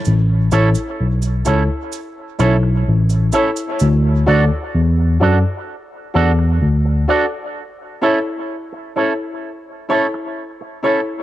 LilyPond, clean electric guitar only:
\new Staff \with { instrumentName = "Clean electric guitar" } { \time 4/4 \key a \major \tempo 4 = 64 r8 <cis' e' a'>8 r8 <cis' e' a'>8 r8 <cis' e' a'>8 r8 <cis' e' a'>8 | r8 <d' fis' a'>8 r8 <d' fis' a'>8 r8 <d' fis' a'>8 r8 <d' fis' a'>8 | r8 <cis' e' a'>8 r8 <cis' e' a'>8 r8 <cis' e' a'>8 r8 <cis' e' a'>8 | }